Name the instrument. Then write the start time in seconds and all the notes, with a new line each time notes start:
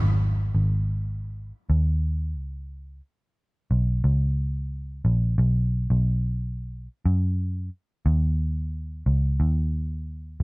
picked electric bass
0.02 G#1
0.55 G#1
1.70 D#2
2.37 C#2
3.71 B1
4.04 C#2
5.05 A#1
5.38 B1
5.90 B1
7.06 F#2
8.06 D#2
9.06 C#2
9.40 D#2